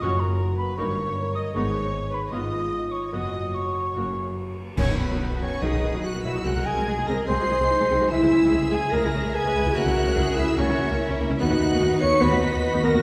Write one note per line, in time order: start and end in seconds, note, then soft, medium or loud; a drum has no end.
0.01 0.34 F#1 medium
0.01 0.80 F#2 medium
0.01 0.34 F#2 medium
0.01 0.55 F#2 medium
0.01 0.20 C#4 medium
0.01 0.20 F#4 medium
0.01 0.77 F#4 medium
0.01 0.10 C#5 medium
0.01 0.22 C#5 medium
0.01 0.21 C#6 medium
0.20 0.57 A#3 soft
0.20 0.58 A#4 medium
0.20 0.56 A#5 medium
0.39 1.15 A#4 medium
0.57 0.96 A#3 soft
0.57 0.78 B4 medium
0.57 0.79 B4 medium
0.57 0.76 B5 medium
0.77 1.10 G1 medium
0.77 1.10 G2 medium
0.77 1.56 G2 medium
0.77 0.96 A#3 medium
0.77 0.96 D#4 medium
0.77 1.16 A#4 medium
0.77 1.35 C#5 medium
0.77 1.36 C#5 medium
0.77 1.34 C#6 medium
0.98 1.33 A#3 medium
1.16 1.56 A#4 medium
1.16 1.54 A#4 medium
1.35 1.56 A#3 soft
1.35 1.55 D#5 medium
1.35 1.41 D#6 medium
1.54 1.87 G#1 medium
1.54 2.31 G#2 medium
1.54 1.87 G#2 medium
1.54 1.73 B3 medium
1.54 1.73 D#4 medium
1.54 2.30 G#4 medium
1.54 2.11 C#5 medium
1.54 2.12 C#5 medium
1.54 2.15 C#6 loud
1.73 2.11 B3 soft
1.93 3.14 G#4 medium
2.12 2.50 B3 soft
2.12 2.32 B4 medium
2.12 2.33 B5 medium
2.31 2.65 G#1 medium
2.31 2.65 G#2 medium
2.31 3.14 G#2 medium
2.31 2.50 B3 medium
2.31 3.11 F4 medium
2.31 2.50 F4 medium
2.31 2.91 D#5 medium
2.31 2.93 D#6 medium
2.51 2.90 B3 soft
2.71 3.14 F4 soft
2.91 3.32 B3 soft
2.91 3.12 C#5 medium
2.91 3.12 C#6 medium
3.11 3.47 F#1 medium
3.11 3.94 F#2 medium
3.11 3.47 F#2 medium
3.11 3.32 B3 medium
3.11 3.32 F#4 medium
3.11 4.54 F#4 medium
3.11 3.54 D#5 medium
3.11 3.55 D#5 medium
3.11 3.56 D#6 medium
3.33 3.73 B3 soft
3.53 4.34 C#5 medium
3.53 4.37 C#5 medium
3.53 4.37 C#6 medium
3.75 3.97 B3 soft
3.95 4.30 F#1 medium
3.95 4.79 F#2 soft
3.95 4.30 F#2 medium
3.95 4.15 A#3 medium
3.95 4.15 F#4 medium
4.17 4.57 A#3 soft
4.37 5.19 F#4 soft
4.58 4.80 A#3 soft
4.76 4.82 B1 medium
4.76 5.37 B2 medium
4.76 6.47 B2 medium
4.76 4.82 D#3 medium
4.76 4.82 F#3 medium
4.76 4.87 C#4 medium
4.76 6.41 F#4 medium
4.76 6.41 B4 medium
4.76 4.97 C#5 medium
4.76 4.98 C#6 loud
4.76 concert bass drum medium
4.76 crash medium
4.88 4.93 B1 medium
4.88 4.93 D#3 medium
4.88 4.93 D#4 soft
4.97 5.03 B1 medium
4.97 5.03 D#3 soft
4.97 5.42 B3 medium
4.97 5.40 B3 medium
4.97 5.03 B3 soft
4.97 5.40 B3 medium
4.97 5.40 B4 medium
4.97 5.41 B5 medium
5.10 5.14 B1 medium
5.10 5.15 D#3 medium
5.10 5.15 F#3 medium
5.20 5.24 B1 medium
5.20 5.25 D#3 soft
5.20 5.25 D#4 soft
5.20 6.03 F#4 medium
5.30 5.34 B1 medium
5.30 5.35 D#3 medium
5.30 5.35 B3 medium
5.40 5.45 B1 medium
5.40 5.45 D#3 medium
5.40 5.45 F#3 medium
5.40 5.82 B3 soft
5.40 5.64 C#4 medium
5.40 5.62 C#4 medium
5.40 5.63 C#5 medium
5.40 5.61 C#6 medium
5.61 5.66 B1 medium
5.61 5.66 D#3 medium
5.61 5.66 F#3 medium
5.61 7.48 F#3 medium
5.61 6.03 D#4 medium
5.61 6.01 G#4 medium
5.61 6.06 D#5 medium
5.61 6.04 D#6 medium
5.72 5.76 B1 medium
5.72 5.77 D#3 medium
5.72 5.77 D#4 medium
5.83 5.87 B1 medium
5.83 5.87 D#3 medium
5.83 6.23 B3 medium
5.83 5.88 B3 medium
5.93 5.98 B1 medium
5.93 5.97 D#3 medium
5.93 5.97 F#3 medium
6.03 6.24 F#4 medium
6.03 6.13 F#4 medium
6.03 6.45 F#4 medium
6.03 6.84 F#4 medium
6.03 6.24 F#5 medium
6.03 6.24 F#6 medium
6.14 6.18 B1 medium
6.14 6.18 D#3 medium
6.14 6.18 B3 medium
6.23 6.28 B1 medium
6.23 6.28 D#3 medium
6.23 6.29 F#3 medium
6.23 6.47 B3 soft
6.23 6.34 E4 medium
6.23 6.31 E5 medium
6.23 6.44 E6 medium
6.34 6.39 B1 medium
6.34 6.39 D#3 medium
6.34 6.38 D#4 medium
6.44 6.49 C2 medium
6.44 7.26 C3 medium
6.44 6.49 G#3 medium
6.44 6.49 C4 medium
6.44 6.65 F#4 medium
6.44 6.54 F#4 medium
6.44 9.71 G#4 medium
6.44 6.87 A#4 medium
6.44 8.11 D#5 medium
6.44 6.67 F#5 medium
6.44 6.66 F#6 loud
6.55 6.59 C2 medium
6.55 6.60 G#3 medium
6.55 6.60 F#4 medium
6.65 6.70 C2 medium
6.65 7.06 G#3 soft
6.65 6.70 G#3 medium
6.65 6.70 D#4 medium
6.65 7.08 G#4 medium
6.65 7.07 G#4 medium
6.65 7.08 G#5 medium
6.65 7.06 G#6 loud
6.76 6.80 C2 medium
6.76 6.80 G#3 medium
6.76 6.80 C4 medium
6.85 6.91 C2 medium
6.85 6.91 G#3 soft
6.85 7.68 F#4 medium
6.85 6.91 F#4 medium
6.85 7.27 G#4 medium
6.97 7.01 C2 medium
6.97 7.01 G#3 medium
6.97 7.01 D#4 medium
7.07 7.12 C2 medium
7.07 7.89 G#3 medium
7.07 7.12 G#3 medium
7.07 7.12 C4 loud
7.07 7.27 A#4 medium
7.07 7.29 A#4 medium
7.07 7.27 A#5 medium
7.07 7.15 A#6 loud
7.27 7.33 C2 medium
7.27 8.12 C3 medium
7.27 7.33 G#3 medium
7.27 7.33 C4 medium
7.27 7.69 G#4 medium
7.27 8.09 C5 loud
7.27 8.10 C5 medium
7.27 8.12 C6 medium
7.27 8.09 C7 loud
7.39 7.43 C2 medium
7.39 7.43 G#3 medium
7.39 7.44 F#4 medium
7.49 7.54 C2 medium
7.49 8.13 F#3 medium
7.49 7.53 G#3 medium
7.49 7.53 D#4 medium
7.59 7.64 C2 medium
7.59 7.64 G#3 medium
7.59 7.64 C4 medium
7.70 8.11 D#4 medium
7.70 8.13 F#4 medium
7.80 7.84 C2 medium
7.80 7.85 G#3 medium
7.80 7.84 D#4 medium
7.90 7.95 C2 medium
7.90 8.92 G#3 medium
7.90 7.95 G#3 medium
7.90 7.95 C4 medium
8.01 8.05 C2 medium
8.01 8.05 G#3 medium
8.01 8.05 F#4 medium
8.10 8.15 C#2 medium
8.10 9.74 C#3 medium
8.10 8.16 G#3 medium
8.10 8.71 E4 medium
8.10 8.51 E4 medium
8.10 8.73 E4 medium
8.10 8.75 E5 loud
8.10 12.21 E5 medium
8.10 8.71 E6 loud
8.21 8.25 C#2 medium
8.21 8.26 G#3 medium
8.21 8.26 E4 medium
8.31 8.36 C#2 medium
8.31 8.36 G#3 medium
8.31 8.72 C#4 medium
8.31 8.36 C#4 medium
8.42 8.46 C#2 medium
8.42 8.46 G#3 medium
8.51 8.56 C#2 medium
8.51 8.56 G#3 medium
8.51 8.55 E4 medium
8.51 9.34 G#4 medium
8.51 9.33 G#4 medium
8.61 8.67 C#2 medium
8.61 8.65 G#3 medium
8.61 8.66 C#4 medium
8.71 8.77 C#2 medium
8.71 8.76 G#3 medium
8.71 9.13 C#4 medium
8.71 8.81 G#4 medium
8.71 8.93 G#4 medium
8.71 8.95 G#5 medium
8.71 8.93 G#6 loud
8.91 8.98 C#2 loud
8.91 8.97 G#3 medium
8.91 9.77 G#3 medium
8.91 9.33 A#4 medium
8.91 9.35 A#4 medium
8.91 9.37 A#5 loud
8.91 9.34 A#6 loud
9.04 9.08 C#2 medium
9.04 9.08 G#3 medium
9.04 9.08 E4 medium
9.14 9.19 C#2 medium
9.14 9.19 G#3 medium
9.14 9.54 C#4 medium
9.14 9.18 C#4 medium
9.24 9.28 C#2 loud
9.24 9.30 G#3 medium
9.34 9.75 G#4 medium
9.34 9.74 G#4 loud
9.34 9.77 G#4 medium
9.34 9.75 B4 medium
9.34 9.76 G#5 medium
9.34 9.75 G#6 loud
9.44 9.48 C#2 medium
9.44 9.50 G#3 medium
9.44 9.49 C#4 medium
9.55 9.59 C#2 loud
9.55 9.59 G#3 medium
9.55 9.95 C#4 medium
9.65 9.70 C#2 medium
9.65 9.70 G#3 medium
9.65 9.69 E4 medium
9.73 9.79 C#2 loud
9.73 10.57 C#3 medium
9.73 9.80 A#3 medium
9.73 9.80 C#4 medium
9.73 10.38 F#4 medium
9.73 10.37 F#4 loud
9.73 11.36 A#4 medium
9.73 10.16 A#4 medium
9.73 10.36 F#5 loud
9.73 10.37 F#6 loud
9.86 9.90 C#2 medium
9.86 9.90 C#4 medium
9.86 9.90 E4 medium
9.95 10.00 C#2 medium
9.95 10.36 C#4 medium
9.95 10.01 C#4 medium
10.06 10.10 C#2 loud
10.06 10.10 A#3 medium
10.06 10.11 C#4 medium
10.16 10.21 C#2 medium
10.16 10.21 C#4 medium
10.16 10.21 E4 medium
10.16 10.58 G#4 medium
10.27 10.31 C#2 medium
10.27 10.32 C#4 medium
10.36 10.42 C#2 loud
10.36 10.42 A#3 loud
10.36 11.19 C#4 medium
10.36 10.42 C#4 loud
10.36 10.57 E4 loud
10.36 10.57 E4 medium
10.36 10.44 E5 medium
10.36 10.58 E6 loud
10.57 10.62 C#2 loud
10.57 11.42 C#3 medium
10.57 10.63 A#3 loud
10.57 11.18 C#4 medium
10.57 10.62 C#4 loud
10.57 10.98 F#4 medium
10.57 11.19 C#5 loud
10.57 11.20 C#6 loud
10.69 10.73 C#2 medium
10.69 10.73 C#4 medium
10.69 10.73 E4 medium
10.79 10.83 C#2 medium
10.79 11.42 A#3 medium
10.79 10.84 C#4 medium
10.89 10.93 C#2 loud
10.89 10.93 A#3 loud
10.89 10.93 C#4 medium
10.99 11.39 E4 medium
10.99 11.42 A#4 medium
11.09 11.14 C#2 medium
11.09 11.14 C#4 medium
11.19 11.24 C#2 loud
11.19 11.24 A#3 loud
11.19 11.23 C#4 medium
11.19 11.42 C#4 medium
11.30 11.35 C#2 medium
11.30 11.34 C#4 medium
11.30 11.34 E4 medium
11.39 11.45 D#2 loud
11.39 12.21 D#3 medium
11.39 11.44 B3 loud
11.39 12.20 D#4 loud
11.39 11.97 F#4 loud
11.39 12.03 F#4 medium
11.39 13.02 B4 medium
11.39 11.97 F#5 loud
11.39 11.97 F#6 loud
11.50 11.55 D#2 medium
11.50 11.54 B3 medium
11.50 11.54 F#4 medium
11.60 11.65 D#2 medium
11.60 11.64 B3 medium
11.60 12.00 B3 medium
11.60 11.64 D#4 medium
11.70 11.75 D#2 loud
11.70 11.74 B3 medium
11.79 11.85 D#2 medium
11.79 11.84 B3 medium
11.79 11.84 F#4 medium
11.79 12.62 B4 medium
11.90 11.96 D#2 medium
11.90 11.95 B3 medium
11.90 11.95 D#4 medium
12.00 12.06 D#2 loud
12.00 12.05 B3 loud
12.00 12.83 B3 medium
12.00 12.21 C#5 loud
12.00 12.23 C#5 loud
12.00 12.24 C#6 loud
12.00 12.22 C#7 loud
12.21 12.26 D#2 loud
12.21 13.02 D#3 medium
12.21 12.25 B3 loud
12.21 13.02 F#4 medium
12.21 12.84 B4 loud
12.21 12.83 B4 medium
12.21 13.02 D#5 medium
12.21 12.83 B5 loud
12.21 12.84 B6 loud
12.31 12.36 D#2 medium
12.31 12.36 B3 medium
12.31 12.36 F#4 medium
12.41 12.47 D#2 medium
12.41 12.45 B3 medium
12.41 12.46 D#4 medium
12.41 13.02 F#4 medium
12.52 12.57 D#2 loud
12.52 12.56 B3 medium
12.73 12.78 D#2 medium
12.73 12.78 B3 medium
12.73 12.77 D#4 medium
12.83 12.88 D#2 loud
12.83 12.87 B3 loud
12.83 13.02 B3 medium
12.83 13.02 A#4 medium
12.83 13.02 A#4 loud
12.83 12.89 A#5 medium
12.83 13.02 A#6 loud
12.94 12.98 D#2 medium
12.94 12.98 B3 medium
12.94 12.98 F#4 medium